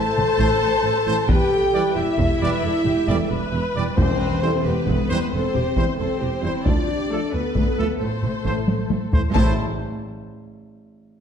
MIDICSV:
0, 0, Header, 1, 11, 480
1, 0, Start_track
1, 0, Key_signature, 0, "minor"
1, 0, Tempo, 447761
1, 1384, Time_signature, 12, 3, 24, 8
1, 12010, End_track
2, 0, Start_track
2, 0, Title_t, "Trumpet section"
2, 0, Program_c, 0, 61
2, 421, Note_on_c, 0, 72, 89
2, 506, Note_off_c, 0, 72, 0
2, 1146, Note_on_c, 0, 72, 86
2, 1229, Note_off_c, 0, 72, 0
2, 1859, Note_on_c, 0, 74, 84
2, 1945, Note_off_c, 0, 74, 0
2, 2580, Note_on_c, 0, 74, 84
2, 2665, Note_off_c, 0, 74, 0
2, 3297, Note_on_c, 0, 74, 78
2, 3383, Note_off_c, 0, 74, 0
2, 4021, Note_on_c, 0, 74, 75
2, 4105, Note_off_c, 0, 74, 0
2, 4740, Note_on_c, 0, 72, 75
2, 4825, Note_off_c, 0, 72, 0
2, 5459, Note_on_c, 0, 72, 82
2, 5544, Note_off_c, 0, 72, 0
2, 6178, Note_on_c, 0, 72, 76
2, 6263, Note_off_c, 0, 72, 0
2, 6894, Note_on_c, 0, 72, 67
2, 6980, Note_off_c, 0, 72, 0
2, 7617, Note_on_c, 0, 69, 64
2, 7702, Note_off_c, 0, 69, 0
2, 8336, Note_on_c, 0, 69, 63
2, 8421, Note_off_c, 0, 69, 0
2, 9061, Note_on_c, 0, 72, 65
2, 9145, Note_off_c, 0, 72, 0
2, 9783, Note_on_c, 0, 72, 66
2, 9866, Note_off_c, 0, 72, 0
2, 10019, Note_on_c, 0, 72, 80
2, 10221, Note_off_c, 0, 72, 0
2, 12010, End_track
3, 0, Start_track
3, 0, Title_t, "Violin section"
3, 0, Program_c, 1, 48
3, 0, Note_on_c, 1, 81, 119
3, 1376, Note_on_c, 1, 79, 107
3, 1380, Note_off_c, 1, 81, 0
3, 2085, Note_off_c, 1, 79, 0
3, 2099, Note_on_c, 1, 76, 100
3, 4020, Note_off_c, 1, 76, 0
3, 4258, Note_on_c, 1, 72, 97
3, 4937, Note_off_c, 1, 72, 0
3, 4970, Note_on_c, 1, 71, 95
3, 5683, Note_on_c, 1, 72, 91
3, 5696, Note_off_c, 1, 71, 0
3, 6397, Note_off_c, 1, 72, 0
3, 6409, Note_on_c, 1, 72, 87
3, 7121, Note_off_c, 1, 72, 0
3, 7126, Note_on_c, 1, 74, 84
3, 7847, Note_on_c, 1, 71, 88
3, 7854, Note_off_c, 1, 74, 0
3, 8562, Note_on_c, 1, 69, 59
3, 8574, Note_off_c, 1, 71, 0
3, 9748, Note_off_c, 1, 69, 0
3, 10018, Note_on_c, 1, 81, 97
3, 10287, Note_off_c, 1, 81, 0
3, 12010, End_track
4, 0, Start_track
4, 0, Title_t, "Violin section"
4, 0, Program_c, 2, 48
4, 0, Note_on_c, 2, 81, 108
4, 1387, Note_on_c, 2, 79, 105
4, 1388, Note_off_c, 2, 81, 0
4, 2105, Note_off_c, 2, 79, 0
4, 2108, Note_on_c, 2, 76, 89
4, 4025, Note_off_c, 2, 76, 0
4, 4257, Note_on_c, 2, 72, 102
4, 4937, Note_off_c, 2, 72, 0
4, 4975, Note_on_c, 2, 71, 82
4, 5684, Note_off_c, 2, 71, 0
4, 5702, Note_on_c, 2, 72, 93
4, 6407, Note_off_c, 2, 72, 0
4, 6418, Note_on_c, 2, 72, 89
4, 7125, Note_off_c, 2, 72, 0
4, 7133, Note_on_c, 2, 74, 85
4, 7853, Note_on_c, 2, 71, 81
4, 7857, Note_off_c, 2, 74, 0
4, 8563, Note_off_c, 2, 71, 0
4, 8565, Note_on_c, 2, 69, 64
4, 9749, Note_off_c, 2, 69, 0
4, 10017, Note_on_c, 2, 81, 98
4, 10287, Note_off_c, 2, 81, 0
4, 12010, End_track
5, 0, Start_track
5, 0, Title_t, "Viola section"
5, 0, Program_c, 3, 48
5, 0, Note_on_c, 3, 72, 110
5, 1382, Note_off_c, 3, 72, 0
5, 1382, Note_on_c, 3, 71, 95
5, 1618, Note_off_c, 3, 71, 0
5, 1631, Note_on_c, 3, 69, 88
5, 1861, Note_on_c, 3, 71, 88
5, 1867, Note_off_c, 3, 69, 0
5, 2102, Note_off_c, 3, 71, 0
5, 2106, Note_on_c, 3, 67, 83
5, 2336, Note_on_c, 3, 69, 75
5, 2345, Note_off_c, 3, 67, 0
5, 2580, Note_off_c, 3, 69, 0
5, 2580, Note_on_c, 3, 71, 85
5, 2815, Note_on_c, 3, 69, 95
5, 2817, Note_off_c, 3, 71, 0
5, 3055, Note_on_c, 3, 67, 84
5, 3059, Note_off_c, 3, 69, 0
5, 3292, Note_on_c, 3, 69, 83
5, 3294, Note_off_c, 3, 67, 0
5, 3534, Note_on_c, 3, 71, 97
5, 3537, Note_off_c, 3, 69, 0
5, 4250, Note_on_c, 3, 72, 91
5, 4258, Note_off_c, 3, 71, 0
5, 4488, Note_on_c, 3, 71, 85
5, 4496, Note_off_c, 3, 72, 0
5, 4735, Note_off_c, 3, 71, 0
5, 4737, Note_on_c, 3, 69, 77
5, 4979, Note_off_c, 3, 69, 0
5, 4980, Note_on_c, 3, 67, 84
5, 5217, Note_on_c, 3, 69, 75
5, 5221, Note_off_c, 3, 67, 0
5, 5458, Note_on_c, 3, 71, 84
5, 5460, Note_off_c, 3, 69, 0
5, 5691, Note_on_c, 3, 69, 90
5, 5700, Note_off_c, 3, 71, 0
5, 5931, Note_off_c, 3, 69, 0
5, 5938, Note_on_c, 3, 67, 78
5, 6180, Note_off_c, 3, 67, 0
5, 6180, Note_on_c, 3, 72, 82
5, 6414, Note_on_c, 3, 69, 95
5, 6416, Note_off_c, 3, 72, 0
5, 6653, Note_off_c, 3, 69, 0
5, 6657, Note_on_c, 3, 67, 74
5, 6892, Note_on_c, 3, 64, 63
5, 6899, Note_off_c, 3, 67, 0
5, 7132, Note_on_c, 3, 65, 70
5, 7137, Note_off_c, 3, 64, 0
5, 7377, Note_off_c, 3, 65, 0
5, 7378, Note_on_c, 3, 67, 65
5, 7618, Note_on_c, 3, 69, 78
5, 7619, Note_off_c, 3, 67, 0
5, 8580, Note_off_c, 3, 69, 0
5, 8582, Note_on_c, 3, 72, 78
5, 9640, Note_off_c, 3, 72, 0
5, 10022, Note_on_c, 3, 64, 84
5, 10026, Note_on_c, 3, 60, 78
5, 10290, Note_off_c, 3, 64, 0
5, 10292, Note_off_c, 3, 60, 0
5, 12010, End_track
6, 0, Start_track
6, 0, Title_t, "French horn section"
6, 0, Program_c, 4, 60
6, 0, Note_on_c, 4, 69, 127
6, 1353, Note_off_c, 4, 69, 0
6, 1376, Note_on_c, 4, 67, 120
6, 2085, Note_off_c, 4, 67, 0
6, 2091, Note_on_c, 4, 64, 118
6, 4016, Note_off_c, 4, 64, 0
6, 4251, Note_on_c, 4, 60, 115
6, 4933, Note_off_c, 4, 60, 0
6, 4973, Note_on_c, 4, 59, 110
6, 5684, Note_on_c, 4, 60, 104
6, 5697, Note_off_c, 4, 59, 0
6, 6398, Note_off_c, 4, 60, 0
6, 6428, Note_on_c, 4, 60, 101
6, 7131, Note_off_c, 4, 60, 0
6, 7142, Note_on_c, 4, 62, 106
6, 7859, Note_on_c, 4, 59, 97
6, 7862, Note_off_c, 4, 62, 0
6, 8576, Note_on_c, 4, 57, 74
6, 8580, Note_off_c, 4, 59, 0
6, 9779, Note_off_c, 4, 57, 0
6, 10020, Note_on_c, 4, 57, 100
6, 10222, Note_off_c, 4, 57, 0
6, 12010, End_track
7, 0, Start_track
7, 0, Title_t, "Trombone section"
7, 0, Program_c, 5, 61
7, 410, Note_on_c, 5, 57, 87
7, 417, Note_on_c, 5, 52, 85
7, 499, Note_off_c, 5, 57, 0
7, 503, Note_off_c, 5, 52, 0
7, 1132, Note_on_c, 5, 57, 77
7, 1137, Note_on_c, 5, 52, 77
7, 1220, Note_off_c, 5, 57, 0
7, 1223, Note_off_c, 5, 52, 0
7, 1853, Note_on_c, 5, 52, 84
7, 1858, Note_on_c, 5, 55, 87
7, 1941, Note_off_c, 5, 52, 0
7, 1944, Note_off_c, 5, 55, 0
7, 2582, Note_on_c, 5, 55, 89
7, 2584, Note_on_c, 5, 52, 91
7, 2666, Note_off_c, 5, 55, 0
7, 2667, Note_off_c, 5, 52, 0
7, 3309, Note_on_c, 5, 55, 87
7, 3320, Note_on_c, 5, 52, 88
7, 3390, Note_off_c, 5, 55, 0
7, 3398, Note_off_c, 5, 52, 0
7, 4034, Note_on_c, 5, 52, 68
7, 4038, Note_on_c, 5, 55, 73
7, 4113, Note_off_c, 5, 52, 0
7, 4116, Note_off_c, 5, 55, 0
7, 4749, Note_on_c, 5, 52, 85
7, 4755, Note_on_c, 5, 55, 83
7, 4830, Note_off_c, 5, 52, 0
7, 4834, Note_off_c, 5, 55, 0
7, 5472, Note_on_c, 5, 52, 76
7, 5483, Note_on_c, 5, 55, 81
7, 5552, Note_off_c, 5, 52, 0
7, 5559, Note_off_c, 5, 55, 0
7, 6180, Note_on_c, 5, 52, 75
7, 6181, Note_on_c, 5, 55, 74
7, 6265, Note_off_c, 5, 52, 0
7, 6265, Note_off_c, 5, 55, 0
7, 6882, Note_on_c, 5, 55, 67
7, 6883, Note_on_c, 5, 52, 66
7, 6972, Note_off_c, 5, 55, 0
7, 6973, Note_off_c, 5, 52, 0
7, 7615, Note_on_c, 5, 57, 69
7, 7624, Note_on_c, 5, 53, 68
7, 7701, Note_off_c, 5, 57, 0
7, 7707, Note_off_c, 5, 53, 0
7, 8336, Note_on_c, 5, 53, 71
7, 8336, Note_on_c, 5, 57, 68
7, 8421, Note_off_c, 5, 53, 0
7, 8421, Note_off_c, 5, 57, 0
7, 9051, Note_on_c, 5, 52, 69
7, 9058, Note_on_c, 5, 57, 68
7, 9138, Note_off_c, 5, 52, 0
7, 9143, Note_off_c, 5, 57, 0
7, 9782, Note_on_c, 5, 57, 64
7, 9788, Note_on_c, 5, 52, 60
7, 9865, Note_off_c, 5, 57, 0
7, 9869, Note_off_c, 5, 52, 0
7, 10007, Note_on_c, 5, 52, 85
7, 10009, Note_on_c, 5, 57, 92
7, 10213, Note_off_c, 5, 52, 0
7, 10214, Note_off_c, 5, 57, 0
7, 12010, End_track
8, 0, Start_track
8, 0, Title_t, "Timpani"
8, 0, Program_c, 6, 47
8, 4258, Note_on_c, 6, 40, 99
8, 4937, Note_off_c, 6, 40, 0
8, 10018, Note_on_c, 6, 45, 98
8, 10243, Note_off_c, 6, 45, 0
8, 12010, End_track
9, 0, Start_track
9, 0, Title_t, "Cello section"
9, 0, Program_c, 7, 48
9, 177, Note_on_c, 7, 45, 72
9, 263, Note_off_c, 7, 45, 0
9, 411, Note_on_c, 7, 45, 94
9, 496, Note_off_c, 7, 45, 0
9, 660, Note_on_c, 7, 45, 71
9, 746, Note_off_c, 7, 45, 0
9, 889, Note_on_c, 7, 45, 70
9, 975, Note_off_c, 7, 45, 0
9, 1138, Note_on_c, 7, 45, 75
9, 1224, Note_off_c, 7, 45, 0
9, 1375, Note_on_c, 7, 40, 106
9, 1461, Note_off_c, 7, 40, 0
9, 2101, Note_on_c, 7, 40, 68
9, 2186, Note_off_c, 7, 40, 0
9, 2328, Note_on_c, 7, 40, 99
9, 2414, Note_off_c, 7, 40, 0
9, 2563, Note_on_c, 7, 40, 61
9, 2649, Note_off_c, 7, 40, 0
9, 2807, Note_on_c, 7, 40, 68
9, 2893, Note_off_c, 7, 40, 0
9, 3047, Note_on_c, 7, 40, 70
9, 3133, Note_off_c, 7, 40, 0
9, 3297, Note_on_c, 7, 40, 94
9, 3383, Note_off_c, 7, 40, 0
9, 3529, Note_on_c, 7, 40, 74
9, 3615, Note_off_c, 7, 40, 0
9, 3778, Note_on_c, 7, 40, 68
9, 3864, Note_off_c, 7, 40, 0
9, 4019, Note_on_c, 7, 40, 65
9, 4105, Note_off_c, 7, 40, 0
9, 4257, Note_on_c, 7, 40, 93
9, 4343, Note_off_c, 7, 40, 0
9, 4979, Note_on_c, 7, 40, 64
9, 5065, Note_off_c, 7, 40, 0
9, 5224, Note_on_c, 7, 40, 89
9, 5310, Note_off_c, 7, 40, 0
9, 5469, Note_on_c, 7, 40, 62
9, 5555, Note_off_c, 7, 40, 0
9, 5704, Note_on_c, 7, 40, 64
9, 5790, Note_off_c, 7, 40, 0
9, 5946, Note_on_c, 7, 40, 61
9, 6031, Note_off_c, 7, 40, 0
9, 6179, Note_on_c, 7, 40, 86
9, 6264, Note_off_c, 7, 40, 0
9, 6425, Note_on_c, 7, 40, 61
9, 6511, Note_off_c, 7, 40, 0
9, 6659, Note_on_c, 7, 40, 57
9, 6745, Note_off_c, 7, 40, 0
9, 6898, Note_on_c, 7, 40, 60
9, 6983, Note_off_c, 7, 40, 0
9, 7145, Note_on_c, 7, 38, 81
9, 7231, Note_off_c, 7, 38, 0
9, 7860, Note_on_c, 7, 38, 52
9, 7946, Note_off_c, 7, 38, 0
9, 8098, Note_on_c, 7, 38, 74
9, 8184, Note_off_c, 7, 38, 0
9, 8336, Note_on_c, 7, 38, 48
9, 8422, Note_off_c, 7, 38, 0
9, 8577, Note_on_c, 7, 45, 58
9, 8663, Note_off_c, 7, 45, 0
9, 8809, Note_on_c, 7, 45, 56
9, 8895, Note_off_c, 7, 45, 0
9, 9050, Note_on_c, 7, 45, 72
9, 9136, Note_off_c, 7, 45, 0
9, 9293, Note_on_c, 7, 45, 52
9, 9379, Note_off_c, 7, 45, 0
9, 9532, Note_on_c, 7, 45, 52
9, 9617, Note_off_c, 7, 45, 0
9, 9779, Note_on_c, 7, 45, 55
9, 9865, Note_off_c, 7, 45, 0
9, 10010, Note_on_c, 7, 45, 98
9, 10283, Note_off_c, 7, 45, 0
9, 12010, End_track
10, 0, Start_track
10, 0, Title_t, "Double bass section"
10, 0, Program_c, 8, 48
10, 190, Note_on_c, 8, 33, 65
10, 276, Note_off_c, 8, 33, 0
10, 419, Note_on_c, 8, 33, 96
10, 504, Note_off_c, 8, 33, 0
10, 659, Note_on_c, 8, 33, 70
10, 745, Note_off_c, 8, 33, 0
10, 905, Note_on_c, 8, 33, 73
10, 991, Note_off_c, 8, 33, 0
10, 1148, Note_on_c, 8, 33, 73
10, 1234, Note_off_c, 8, 33, 0
10, 1386, Note_on_c, 8, 28, 94
10, 1472, Note_off_c, 8, 28, 0
10, 2109, Note_on_c, 8, 28, 66
10, 2195, Note_off_c, 8, 28, 0
10, 2334, Note_on_c, 8, 28, 84
10, 2420, Note_off_c, 8, 28, 0
10, 2582, Note_on_c, 8, 28, 69
10, 2668, Note_off_c, 8, 28, 0
10, 2815, Note_on_c, 8, 28, 69
10, 2901, Note_off_c, 8, 28, 0
10, 3057, Note_on_c, 8, 28, 60
10, 3142, Note_off_c, 8, 28, 0
10, 3304, Note_on_c, 8, 28, 100
10, 3389, Note_off_c, 8, 28, 0
10, 3545, Note_on_c, 8, 28, 67
10, 3630, Note_off_c, 8, 28, 0
10, 3781, Note_on_c, 8, 28, 75
10, 3867, Note_off_c, 8, 28, 0
10, 4022, Note_on_c, 8, 28, 64
10, 4108, Note_off_c, 8, 28, 0
10, 4269, Note_on_c, 8, 28, 88
10, 4355, Note_off_c, 8, 28, 0
10, 4978, Note_on_c, 8, 28, 66
10, 5064, Note_off_c, 8, 28, 0
10, 5223, Note_on_c, 8, 28, 85
10, 5309, Note_off_c, 8, 28, 0
10, 5471, Note_on_c, 8, 28, 69
10, 5557, Note_off_c, 8, 28, 0
10, 5710, Note_on_c, 8, 28, 63
10, 5796, Note_off_c, 8, 28, 0
10, 5953, Note_on_c, 8, 28, 61
10, 6039, Note_off_c, 8, 28, 0
10, 6194, Note_on_c, 8, 28, 79
10, 6280, Note_off_c, 8, 28, 0
10, 6424, Note_on_c, 8, 28, 60
10, 6510, Note_off_c, 8, 28, 0
10, 6664, Note_on_c, 8, 28, 65
10, 6750, Note_off_c, 8, 28, 0
10, 6903, Note_on_c, 8, 28, 58
10, 6989, Note_off_c, 8, 28, 0
10, 7142, Note_on_c, 8, 38, 76
10, 7228, Note_off_c, 8, 38, 0
10, 7863, Note_on_c, 8, 38, 57
10, 7949, Note_off_c, 8, 38, 0
10, 8101, Note_on_c, 8, 38, 68
10, 8187, Note_off_c, 8, 38, 0
10, 8343, Note_on_c, 8, 38, 54
10, 8428, Note_off_c, 8, 38, 0
10, 8584, Note_on_c, 8, 33, 54
10, 8670, Note_off_c, 8, 33, 0
10, 8819, Note_on_c, 8, 33, 48
10, 8905, Note_off_c, 8, 33, 0
10, 9061, Note_on_c, 8, 33, 79
10, 9147, Note_off_c, 8, 33, 0
10, 9308, Note_on_c, 8, 33, 52
10, 9394, Note_off_c, 8, 33, 0
10, 9546, Note_on_c, 8, 33, 53
10, 9632, Note_off_c, 8, 33, 0
10, 9785, Note_on_c, 8, 33, 52
10, 9871, Note_off_c, 8, 33, 0
10, 10021, Note_on_c, 8, 33, 87
10, 10289, Note_off_c, 8, 33, 0
10, 12010, End_track
11, 0, Start_track
11, 0, Title_t, "Taiko and cinematic ensemble drums"
11, 187, Note_on_c, 9, 47, 55
11, 294, Note_off_c, 9, 47, 0
11, 424, Note_on_c, 9, 41, 73
11, 531, Note_off_c, 9, 41, 0
11, 1383, Note_on_c, 9, 41, 108
11, 1490, Note_off_c, 9, 41, 0
11, 2340, Note_on_c, 9, 41, 85
11, 2447, Note_off_c, 9, 41, 0
11, 3063, Note_on_c, 9, 47, 52
11, 3170, Note_off_c, 9, 47, 0
11, 3299, Note_on_c, 9, 41, 75
11, 3406, Note_off_c, 9, 41, 0
11, 4260, Note_on_c, 9, 41, 108
11, 4367, Note_off_c, 9, 41, 0
11, 5221, Note_on_c, 9, 41, 83
11, 5328, Note_off_c, 9, 41, 0
11, 5945, Note_on_c, 9, 47, 54
11, 6052, Note_off_c, 9, 47, 0
11, 6180, Note_on_c, 9, 41, 76
11, 6287, Note_off_c, 9, 41, 0
11, 7140, Note_on_c, 9, 41, 108
11, 7247, Note_off_c, 9, 41, 0
11, 8098, Note_on_c, 9, 41, 86
11, 8205, Note_off_c, 9, 41, 0
11, 8815, Note_on_c, 9, 47, 53
11, 8922, Note_off_c, 9, 47, 0
11, 9058, Note_on_c, 9, 41, 69
11, 9166, Note_off_c, 9, 41, 0
11, 9301, Note_on_c, 9, 48, 90
11, 9409, Note_off_c, 9, 48, 0
11, 9542, Note_on_c, 9, 48, 90
11, 9649, Note_off_c, 9, 48, 0
11, 9785, Note_on_c, 9, 43, 97
11, 9892, Note_off_c, 9, 43, 0
11, 10028, Note_on_c, 9, 41, 115
11, 10135, Note_off_c, 9, 41, 0
11, 12010, End_track
0, 0, End_of_file